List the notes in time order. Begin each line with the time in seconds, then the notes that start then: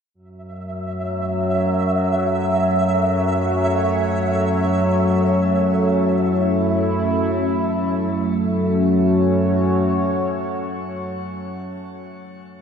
0.14 F#2 F#3 A3 E5
1.50 C#4
1.96 F#4 C#5
5.90 E4
8.09 F#2 F#3 A3
8.25 C#4
8.40 F#4
8.55 C#5